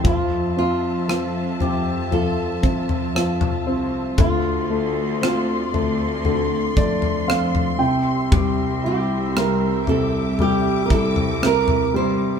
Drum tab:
SD |----r-------r---|----r-------r---|----r-------r---|
FT |o-----o-o--o-o--|o-----o-o--o-o--|o-----o-o--o-o--|
BD |o---------o-----|o---------o-----|o---------o-----|